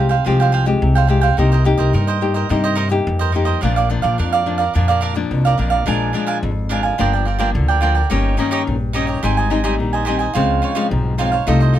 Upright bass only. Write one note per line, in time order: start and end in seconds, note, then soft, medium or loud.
0.00 0.18 C2 medium
0.26 0.74 C2 medium
0.82 1.30 C2 loud
1.38 1.74 C2 loud
1.78 1.91 C2 medium
1.94 2.42 G2 medium
2.50 2.98 G2 loud
3.07 3.54 F2 loud
3.63 3.98 A#1 loud
4.04 4.16 A#1 loud
4.19 4.67 F2 medium
4.75 5.23 F2 medium
5.31 5.56 C2 medium
5.59 5.84 A#1 medium
5.88 6.11 A#1 loud
6.43 6.91 G#1 medium
7.00 7.56 G1 loud
7.55 8.03 D2 loud
8.11 8.35 G1 medium
8.67 9.15 A#1 medium
9.23 9.79 G#1 loud
9.79 10.27 A#1 loud
10.35 10.59 C#2 medium
10.91 11.39 B1 loud
11.47 11.79 C2 loud